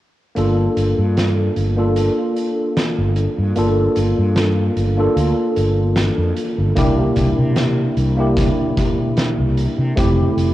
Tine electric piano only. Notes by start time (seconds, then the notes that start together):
0.35 A#3 D4 F4 A4
1.76 A#3 D4 F4 A4
3.56 A#3 D4 F4 A4
4.97 A#3 D4 F4 A4
6.75 A#3 D4 E4 G4
8.17 A#3 D4 E4 G4
9.96 A3 C4 E4 G4